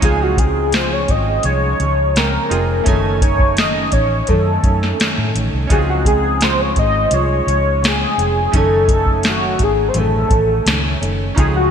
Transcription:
0.00 fingered electric bass C#2, steel-string acoustic guitar C#3 F3 G#3 C4, synth keys C#4 D#4 F4, kick, closed hi-hat
0.04 soft synth lead G#4, synth keys G#4
0.22 soft synth lead F#4
0.37 steel-string acoustic guitar F3 G#3 C4, soft synth lead G#4, kick, closed hi-hat
0.72 steel-string acoustic guitar C#3 F3 G#3 C4, soft synth lead C5, snare, closed hi-hat
0.93 soft synth lead C#5
1.08 fingered electric bass G#1, steel-string acoustic guitar F3 G#3 C4, soft synth lead D#5, kick, closed hi-hat
1.43 fingered electric bass C2, steel-string acoustic guitar F3 G#3, soft synth lead C#5, closed hi-hat
1.80 fingered electric bass C#2, steel-string acoustic guitar F3 G#3, closed hi-hat
2.15 steel-string acoustic guitar C#3 F3 G#3 C4, soft synth lead A#4, snare, closed hi-hat
2.49 fingered electric bass F1, steel-string acoustic guitar G#3 C4, synth keys C4 D#4 F4 G#4, closed hi-hat
2.53 steel-string acoustic guitar F3
2.84 fingered electric bass F#1, steel-string acoustic guitar F#2, synth keys A3 C#4 D#4, kick, closed hi-hat
2.88 steel-string acoustic guitar D#3 A3 C#4, soft synth lead A4, synth keys G#5
3.21 steel-string acoustic guitar D#3 A3 C#4, soft synth lead C#5, kick, closed hi-hat
3.39 kick
3.57 steel-string acoustic guitar F#2 D#3 A3 C#4, soft synth lead D#5, snare, closed hi-hat
3.92 fingered electric bass A1, steel-string acoustic guitar D#3 A3 C#4, soft synth lead C#5, kick, closed hi-hat
4.27 steel-string acoustic guitar F#2 D#3 A3 C#4, fingered electric bass F#2, soft synth lead A4, kick, closed hi-hat
4.63 fingered electric bass F#2, steel-string acoustic guitar D#3 A3 C#4, kick, closed hi-hat
4.83 snare
4.99 steel-string acoustic guitar F#2 D#3 A3 C#4, snare, closed hi-hat
5.18 fingered electric bass A2
5.34 fingered electric bass A1, steel-string acoustic guitar D#3 A3 C#4, closed hi-hat
5.53 fingered electric bass C2
5.67 fingered electric bass C#2, steel-string acoustic guitar C#3 F3 G#3 C4, synth keys C#4 D#4 F4, kick, closed hi-hat
5.72 synth keys F#4, soft synth lead G#4
5.79 synth keys G#4
5.89 soft synth lead F#4
6.05 steel-string acoustic guitar F3 G#3 C4, soft synth lead G#4, kick, closed hi-hat
6.40 steel-string acoustic guitar C#3 F3 G#3 C4, soft synth lead C5, snare, closed hi-hat
6.61 soft synth lead C#5
6.76 fingered electric bass G#1, steel-string acoustic guitar F3 G#3 C4, soft synth lead D#5, kick, closed hi-hat
7.11 fingered electric bass C2, steel-string acoustic guitar F3 G#3, soft synth lead C#5, closed hi-hat
7.47 fingered electric bass C#2, steel-string acoustic guitar F3 G#3, closed hi-hat
7.82 steel-string acoustic guitar C#3 F3 G#3 C4, snare, closed hi-hat
7.87 soft synth lead G#4
8.17 fingered electric bass F1, steel-string acoustic guitar F3 G#3 C4, closed hi-hat
8.51 fingered electric bass F#1, steel-string acoustic guitar F#2 D#3 A3 C#4, synth keys A3 C#4 D#4, kick, closed hi-hat
8.56 soft synth lead A4, synth keys G#5
8.88 steel-string acoustic guitar D#3 A3 C#4, kick, closed hi-hat
8.93 soft synth lead A4
9.06 kick
9.23 steel-string acoustic guitar F#2 D#3 A3 C#4, snare, closed hi-hat
9.29 soft synth lead F#4
9.58 fingered electric bass G#1, steel-string acoustic guitar D#3 A3 C#4, kick, closed hi-hat
9.63 soft synth lead G#4
9.88 soft synth lead C5
9.94 fingered electric bass A1, steel-string acoustic guitar F#2 D#3 A3 C#4, closed hi-hat
9.98 soft synth lead A4
10.30 fingered electric bass A1, steel-string acoustic guitar D#3 A3 C#4, kick, closed hi-hat
10.65 fingered electric bass C#2, steel-string acoustic guitar F#2 D#3 A3 C#4, snare, closed hi-hat
11.01 fingered electric bass F#1, steel-string acoustic guitar D#3 A3 C#4, closed hi-hat
11.35 fingered electric bass C#2, steel-string acoustic guitar C#3 F3 G#3 C4, synth keys C#4 D#4 F4, soft synth lead G#4, kick, closed hi-hat
11.40 synth keys G#4
11.55 soft synth lead F#4

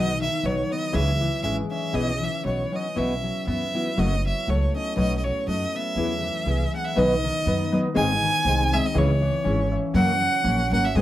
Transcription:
Already playing: upright bass B1, nylon-string guitar B2 F#3 B3 D#4 F#4, harp D#3 B3, violin D#5
0.21 harp D#3, violin E5
0.44 upright bass B1, nylon-string guitar F#3 B3 D#4 F#4, harp F#3, violin C#5
0.70 harp B3, violin D#5
0.92 upright bass C#2, nylon-string guitar C#3 E3 C#4 E4 G#4, harp E3, violin E5
1.21 harp E3
1.43 upright bass G#1, nylon-string guitar E3 C#4 E4 G#4, harp G#3, violin E5
1.71 harp C#4, violin E5
1.93 upright bass B1, nylon-string guitar B2 E3 B3 E4 G#4, harp E3, violin D#5
2.22 harp E3, violin E5
2.43 upright bass B1, nylon-string guitar F#3 C#4 D#4 F#4, harp B3, violin C#5
2.72 nylon-string guitar F#3 C#4 D#4 F#4, harp C#4, violin D#5
2.96 upright bass B1, nylon-string guitar B2 E3 B3 E4 F#4, harp F#3, violin E5
3.24 harp F#3
3.47 upright bass F#2, nylon-string guitar E3 B3 E4 F#4, harp B3, violin E5
3.74 nylon-string guitar E3 B3 E4 F#4, harp E4
3.97 upright bass F#1, nylon-string guitar F#2 C#3 F#3 A3 C#4 F#4, harp F#3, violin D#5
4.26 harp F#3, violin E5
4.47 upright bass C#2, nylon-string guitar F#3 A3 C#4 F#4, harp A3, violin C#5
4.76 harp C#4, violin D#5
4.96 upright bass B1, nylon-string guitar B2 F#3 A3 D#4 F#4, harp F#3, violin D#5
5.18 violin D#5
5.24 harp F#3, violin C#5
5.47 upright bass F#2, nylon-string guitar F#3 A3 D#4 F#4, harp A3, violin D#5
5.75 harp B3, violin E5
5.96 upright bass E2, nylon-string guitar E3 B3 E4 G#4, harp E3
6.24 harp E3
6.46 upright bass C2, nylon-string guitar E3 B3 E4 G#4, harp G#3
6.74 harp B3, violin F#5
6.85 violin E5
6.96 upright bass B1, nylon-string guitar B2 F#3 B3 D#4 B4, harp D#3, violin D#5
7.24 harp D#3
7.46 upright bass F#2, nylon-string guitar F#3 B3 D#4 B4, harp B3
7.72 nylon-string guitar F#3 B3 D#4 B4, harp D#5
7.94 upright bass G#1, nylon-string guitar G#2 D#3 G#3 C4 D#4 G#4, harp D#3, violin G#5
8.23 harp D#3
8.45 upright bass C2, nylon-string guitar G#3 C4 D#4 G#4, harp C4
8.73 nylon-string guitar G#3 C4 D#4 G#4, harp D#5, violin E5
8.86 violin D#5
8.94 upright bass C#2, nylon-string guitar C#3 E3 C#4 E4 G#4, harp E3
8.98 violin C#5
9.22 harp E3
9.44 upright bass G#1, nylon-string guitar E3 C#4 E4 G#4, harp C#4
9.72 harp E5
9.94 upright bass F#2, nylon-string guitar F#2 C#3 F#3 A#3 C#4 A#4, harp F#3, violin F#5
10.21 harp F#3
10.43 upright bass A#1, nylon-string guitar F#3 A#3 C#4 A#4, harp C#4
10.71 upright bass G#1, nylon-string guitar F#3 A#3 C#4 A#4, harp F#5, violin F#5
10.85 violin E5
10.95 upright bass G#2, nylon-string guitar G#2 D#3 G#3 B3 D#4 G#4, harp G#3, violin D#5

